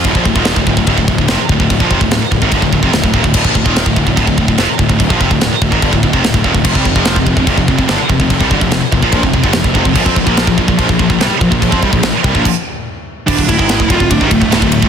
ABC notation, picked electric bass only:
X:1
M:4/4
L:1/16
Q:1/4=145
K:Dm
V:1 name="Picked electric bass" clef=bass
D,,, B,,, D,,, _E,,,2 D,,, D,,, D,,, D,,, D,,, D,,, D,,, F,,, z D,,, D,,, | D,,, B,,, F,,, D,,, D,,, z D,,, ^G,,, =G,,, D,,, D,,, F,,, D,,, D,,, _E,,, D,,, | D,,, B,,, D,,, _E,,,2 D,,, D,,, D,,, D,,, D,,, D,,, D,,, F,,, z D,,, D,,, | D,,, B,,, F,,, D,,, D,,, z D,,, ^G,,, =G,,, D,,, D,,, F,,, D,,, D,,, _E,,, D,,, |
F,,, C,, F,,, F,,,2 F,,, F,,, F,,, F,,, F,,, F,,, F,,, G,,, z F,,, F,,, | F,,, C,, G,,, F,,, F,,, z F,,, B,,, B,,, F,,, F,,, G,,, F,,, F,,, F,,, F,,, | B,,, F,, B,,, B,,,2 B,,, B,,, B,,, B,,, B,,, B,,, B,,, C,, z B,,, B,,, | B,,, F,, C,, B,,, B,,, z C,, B,,, z8 |
D,,, D,,, D,,, ^G,,,2 D,,, D,,, D,,, D,,, G,,, D,,, D,,, D,,, D,,,2 _E,,, |]